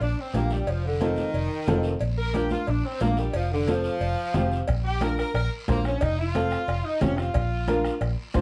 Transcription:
0.00 0.14 A#1 medium
0.00 0.18 D4 medium
0.00 cowbell medium
0.00 long guiro medium
0.20 0.35 C4 medium
0.34 0.61 A#1 medium
0.34 0.51 A#3 medium
0.34 0.57 D4 medium
0.34 0.57 F4 medium
0.34 0.57 G4 medium
0.34 cowbell medium
0.34 high conga medium
0.34 short guiro medium
0.50 0.68 G3 medium
0.50 short guiro medium
0.67 1.21 F1 medium
0.67 0.85 F3 medium
0.67 cowbell loud
0.67 long guiro medium
0.85 1.01 D3 medium
1.00 1.99 D#3 medium
1.00 1.24 C4 medium
1.00 1.24 F4 medium
1.00 1.25 A4 medium
1.00 cowbell medium
1.00 high conga medium
1.00 short guiro medium
1.16 high conga medium
1.16 short guiro medium
1.33 1.48 F1 medium
1.33 cowbell medium
1.33 long guiro medium
1.66 1.94 F1 medium
1.66 1.91 C4 medium
1.66 1.91 F4 medium
1.66 1.91 A4 medium
1.66 cowbell medium
1.66 high conga medium
1.66 low conga medium
1.66 low timbale medium
1.66 short guiro medium
1.83 short guiro medium
1.99 2.54 A#1 medium
1.99 cowbell loud
1.99 long guiro medium
2.18 2.34 A#4 medium
2.33 2.58 D4 medium
2.33 2.58 F4 medium
2.33 2.51 G4 medium
2.33 2.58 A#4 medium
2.33 cowbell medium
2.33 high conga medium
2.33 short guiro medium
2.50 2.67 F4 medium
2.50 high conga medium
2.50 short guiro medium
2.66 2.81 A#1 medium
2.66 2.84 D4 medium
2.66 cowbell medium
2.66 long guiro medium
2.85 3.01 C4 medium
3.00 3.28 A#1 medium
3.00 3.17 A#3 medium
3.00 3.24 D4 medium
3.00 3.25 F4 medium
3.00 3.25 A#4 medium
3.00 cowbell medium
3.00 high conga medium
3.00 low timbale medium
3.00 short guiro medium
3.17 3.35 G3 medium
3.17 short guiro medium
3.33 3.88 F1 medium
3.33 3.51 F3 medium
3.33 cowbell loud
3.33 long guiro medium
3.52 3.68 D3 loud
3.67 4.66 F3 loud
3.67 3.91 C4 medium
3.67 3.91 F4 medium
3.67 3.91 A4 medium
3.67 cowbell medium
3.67 high conga medium
3.67 short guiro medium
3.84 short guiro medium
4.00 4.14 F1 medium
4.00 cowbell medium
4.00 long guiro medium
4.34 4.61 F1 medium
4.34 4.58 C4 medium
4.34 4.58 F4 medium
4.34 4.58 G4 medium
4.34 4.66 F5 medium
4.34 cowbell medium
4.34 high conga medium
4.34 low conga medium
4.34 low timbale medium
4.34 short guiro medium
4.52 short guiro medium
4.68 5.22 A#1 medium
4.68 bombo low medium
4.68 bombo rim medium
4.68 cowbell loud
4.68 long guiro medium
4.84 5.01 G4 loud
5.01 5.25 D4 medium
5.01 5.25 F4 medium
5.01 5.17 A#4 loud
5.01 5.25 A#4 medium
5.01 bombo rim medium
5.01 cowbell medium
5.01 high conga medium
5.01 short guiro medium
5.18 5.34 A#4 medium
5.18 bombo rim medium
5.18 short guiro medium
5.34 5.48 A#1 medium
5.34 5.51 A#4 loud
5.34 bombo rim medium
5.34 cowbell medium
5.34 long guiro medium
5.68 5.95 A#1 medium
5.68 5.85 A#3 loud
5.68 5.91 D4 medium
5.68 5.92 F4 medium
5.68 5.92 C5 medium
5.68 bombo low medium
5.68 bombo rim medium
5.68 cowbell medium
5.68 high conga medium
5.68 low timbale medium
5.68 short guiro medium
5.85 6.02 C#4 medium
5.85 bombo rim medium
5.85 short guiro medium
6.01 6.55 F1 loud
6.01 6.18 D#4 loud
6.01 bombo low medium
6.01 bombo rim medium
6.01 cowbell loud
6.01 long guiro medium
6.19 6.83 F4 loud
6.34 6.58 C4 medium
6.34 6.58 F4 medium
6.34 6.58 A4 medium
6.34 bombo rim medium
6.34 cowbell medium
6.34 high conga medium
6.34 short guiro medium
6.51 bombo rim medium
6.51 short guiro medium
6.68 6.81 F1 medium
6.68 bombo rim medium
6.68 cowbell medium
6.68 long guiro medium
6.85 7.01 D#4 medium
7.01 7.28 F1 loud
7.01 7.25 C4 medium
7.01 7.17 C#4 medium
7.01 7.25 F4 medium
7.01 7.25 G4 medium
7.01 bombo low medium
7.01 bombo rim medium
7.01 cowbell medium
7.01 high conga medium
7.01 low conga medium
7.01 low timbale medium
7.01 short guiro medium
7.17 8.14 F4 medium
7.17 bombo rim medium
7.17 short guiro medium
7.34 7.88 A#1 medium
7.34 bombo low medium
7.34 bombo rim medium
7.34 cowbell loud
7.34 long guiro medium
7.68 7.91 D4 medium
7.68 7.91 F4 medium
7.68 7.91 A#4 loud
7.68 bombo rim medium
7.68 cowbell medium
7.68 high conga medium
7.68 short guiro medium
7.85 bombo rim medium
7.85 short guiro medium
8.01 8.14 A#1 medium
8.01 bombo rim medium
8.01 cowbell medium
8.01 long guiro medium
8.34 8.41 G1 medium
8.34 8.41 D4 medium
8.34 8.41 F4 medium
8.34 8.41 C5 medium
8.34 bombo low medium
8.34 bombo rim medium
8.34 cowbell medium
8.34 high conga medium
8.34 low timbale medium
8.34 short guiro medium

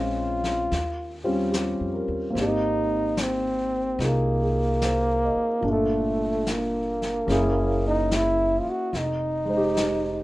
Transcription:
0.00 0.66 A#1 medium
0.00 0.67 G#3 medium
0.00 0.69 C4 soft
0.00 0.71 C#4 soft
0.00 0.73 F4 medium
0.00 1.23 F4 medium
0.44 snare soft
0.71 1.76 D#2 medium
0.71 brush sweep soft
0.71 snare soft
1.24 2.34 G3 medium
1.24 2.32 C4 soft
1.24 2.34 C#4 soft
1.24 2.34 F4 medium
1.52 2.16 G4 soft
1.52 snare soft
1.52 hi-hat pedal medium
1.80 2.05 F2 medium
1.94 2.51 A#4 soft
2.08 2.33 D#2 medium
2.30 5.61 A#3 soft
2.30 5.63 C4 soft
2.35 3.95 G#1 medium
2.35 3.98 D#4 soft
2.35 brush sweep soft
2.35 snare soft
2.40 3.23 D#4 loud
2.40 5.66 G4 medium
3.17 snare soft
3.17 hi-hat pedal medium
3.22 4.06 C4 medium
3.99 5.32 C2 medium
3.99 5.64 D#4 soft
3.99 5.64 F4 soft
3.99 brush sweep soft
3.99 snare soft
4.03 5.73 A#3 medium
4.03 4.40 G#4 soft
4.41 4.98 G#4 soft
4.82 5.47 C5 soft
4.82 snare soft
4.82 hi-hat pedal medium
5.25 5.81 D#5 soft
5.36 muted upright bass stroke soft
5.61 7.23 G1 medium
5.61 7.27 A#2 soft
5.61 7.28 D4 soft
5.61 brush sweep soft
5.68 6.54 A3 medium
5.68 7.30 F4 soft
5.72 7.32 A4 medium
6.47 snare soft
6.47 hi-hat pedal medium
6.52 7.86 A#3 medium
7.02 snare soft
7.27 8.61 F#1 medium
7.27 8.92 A#3 medium
7.27 8.93 C#4 medium
7.27 brush sweep soft
7.27 snare soft
7.31 8.94 E4 soft
7.31 8.95 G#4 medium
7.87 8.16 D#4 medium
8.11 8.62 E4 medium
8.11 snare soft
8.11 hi-hat pedal soft
8.60 8.71 F4 medium
8.66 8.99 F#4 medium
8.66 muted upright bass stroke soft
8.93 10.23 F1 medium
8.93 brush sweep soft
8.93 snare soft
8.98 10.23 D#4 medium
9.45 10.23 G#3 medium
9.49 10.23 D#4 medium
9.49 10.23 C5 medium
9.57 10.23 G4 medium
9.77 snare soft
9.77 hi-hat pedal medium

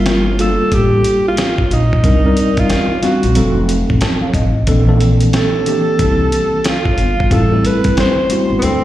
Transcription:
0.00 0.55 G1 loud
0.00 0.22 G3 medium
0.00 0.22 A#3 medium
0.00 0.23 D4 medium
0.00 0.23 F4 medium
0.00 0.43 F4 medium
0.00 0.23 A#4 medium
0.06 snare medium
0.06 closed hi-hat medium
0.38 1.39 G3 medium
0.38 1.40 A#3 medium
0.38 1.40 D4 medium
0.38 1.40 F4 medium
0.38 1.40 A4 medium
0.38 0.75 A4 loud
0.38 closed hi-hat medium
0.72 1.00 A1 medium
0.72 1.26 G4 loud
0.72 kick medium
0.72 closed hi-hat medium
1.04 closed hi-hat medium
1.28 1.69 F4 loud
1.37 snare loud
1.37 closed hi-hat medium
1.58 kick medium
1.71 2.04 A#1 medium
1.71 2.62 D#4 medium
1.71 closed hi-hat medium
1.93 kick medium
2.04 2.32 C2 loud
2.04 2.19 G3 medium
2.04 2.19 C4 medium
2.04 2.20 D4 medium
2.04 2.20 D#4 medium
2.04 2.20 A#4 medium
2.04 kick loud
2.04 closed hi-hat medium
2.25 2.86 G3 medium
2.25 2.87 C4 medium
2.25 2.87 D#4 medium
2.25 2.87 A#4 medium
2.25 2.87 D5 medium
2.37 closed hi-hat medium
2.57 3.03 F4 loud
2.57 kick loud
2.57 closed hi-hat medium
2.70 snare loud
2.70 closed hi-hat medium
3.02 3.35 G3 medium
3.02 3.34 C4 medium
3.02 3.36 D4 medium
3.02 3.35 D#4 medium
3.02 3.65 F#4 medium
3.02 3.36 F5 medium
3.02 snare soft
3.02 closed hi-hat medium
3.23 3.34 A#1 medium
3.23 closed hi-hat soft
3.35 3.82 F1 loud
3.35 4.43 F3 medium
3.35 4.42 F#3 medium
3.35 4.43 C4 medium
3.35 4.43 D#4 medium
3.35 4.43 A4 medium
3.35 closed hi-hat medium
3.69 closed hi-hat medium
3.90 4.00 A1 medium
3.90 kick medium
4.01 4.20 A5 medium
4.01 snare loud
4.01 closed hi-hat medium
4.22 4.33 F5 medium
4.34 4.62 A1 medium
4.34 4.65 D#5 medium
4.34 kick medium
4.34 closed hi-hat medium
4.67 5.24 A#1 loud
4.67 4.83 E3 medium
4.67 4.83 A#3 medium
4.67 4.83 C4 medium
4.67 4.83 D4 medium
4.67 4.84 A4 medium
4.67 kick loud
4.67 closed hi-hat medium
4.88 5.50 E3 medium
4.88 5.50 A#3 medium
4.88 5.50 C4 medium
4.88 5.50 D4 medium
4.88 5.50 A4 medium
5.01 closed hi-hat medium
5.20 closed hi-hat medium
5.33 6.69 A4 medium
5.33 snare loud
5.33 closed hi-hat medium
5.66 6.67 E3 medium
5.66 6.67 A#3 medium
5.66 6.67 C4 medium
5.66 6.67 D4 medium
5.66 6.68 G4 medium
5.66 closed hi-hat medium
5.99 6.28 C2 medium
5.99 kick medium
5.99 closed hi-hat medium
6.32 closed hi-hat medium
6.64 7.34 F4 medium
6.64 snare loud
6.64 closed hi-hat medium
6.85 kick medium
6.98 7.26 G1 medium
6.98 closed hi-hat medium
7.20 kick medium
7.30 7.59 A1 loud
7.30 7.46 G3 medium
7.30 7.47 A3 medium
7.30 7.47 C4 medium
7.30 7.47 E4 medium
7.30 7.47 A4 medium
7.30 7.68 A4 loud
7.30 kick loud
7.30 closed hi-hat medium
7.52 8.14 G3 medium
7.52 8.14 A3 medium
7.52 8.14 C4 medium
7.52 8.14 E4 medium
7.52 8.14 A4 medium
7.65 7.98 B4 loud
7.65 closed hi-hat medium
7.84 kick medium
7.84 closed hi-hat medium
7.97 8.60 C5 loud
7.97 snare loud
7.97 closed hi-hat medium
8.30 8.63 G3 medium
8.30 8.62 A3 medium
8.30 8.62 C4 medium
8.30 8.63 E4 medium
8.30 8.63 F#4 medium
8.30 closed hi-hat medium
8.50 8.61 G1 medium
8.59 8.84 D2 medium
8.59 8.84 F#3 medium
8.59 8.84 A3 medium
8.59 8.64 B3 medium
8.59 8.84 C4 medium
8.59 closed hi-hat medium
8.63 8.84 C4 medium
8.63 8.84 D4 medium
8.63 8.84 A4 medium

